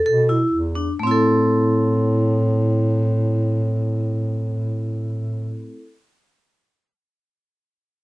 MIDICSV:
0, 0, Header, 1, 3, 480
1, 0, Start_track
1, 0, Key_signature, 0, "minor"
1, 0, Tempo, 500000
1, 7709, End_track
2, 0, Start_track
2, 0, Title_t, "Vibraphone"
2, 0, Program_c, 0, 11
2, 58, Note_on_c, 0, 69, 60
2, 186, Note_off_c, 0, 69, 0
2, 280, Note_on_c, 0, 64, 55
2, 541, Note_off_c, 0, 64, 0
2, 726, Note_on_c, 0, 62, 45
2, 856, Note_off_c, 0, 62, 0
2, 955, Note_on_c, 0, 57, 52
2, 993, Note_on_c, 0, 60, 49
2, 1028, Note_on_c, 0, 64, 48
2, 1069, Note_on_c, 0, 69, 48
2, 5466, Note_off_c, 0, 57, 0
2, 5504, Note_off_c, 0, 60, 0
2, 5539, Note_off_c, 0, 64, 0
2, 5581, Note_off_c, 0, 69, 0
2, 7709, End_track
3, 0, Start_track
3, 0, Title_t, "Bass clarinet"
3, 0, Program_c, 1, 71
3, 60, Note_on_c, 1, 47, 67
3, 427, Note_off_c, 1, 47, 0
3, 500, Note_on_c, 1, 40, 57
3, 875, Note_off_c, 1, 40, 0
3, 943, Note_on_c, 1, 45, 65
3, 5454, Note_off_c, 1, 45, 0
3, 7709, End_track
0, 0, End_of_file